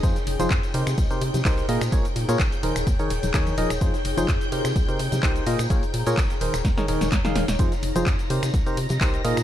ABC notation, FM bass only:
X:1
M:4/4
L:1/16
Q:"Swing 16ths" 1/4=127
K:Cphr
V:1 name="FM bass" clef=bass
F,, z F,,, F,,, F,, z C, C, C,, z C, C, C,, z B,, B,, | B,,, z B,, B,, B,,, z E,,, E,,, E,, z E,,, E,,, E,, z E,,, E,,, | F,, z F,,, F,,, F,, z C, C, C,, z C, C, C,, z B,, B,, | B,,, z B,, B,, B,,, z E,,, E,,, E,, z E,,, E,,, E,, z E,,, E,,, |
F,, z F,,, F,,, F,, z C, C, C,, z C, C, C,, z B,, B,, |]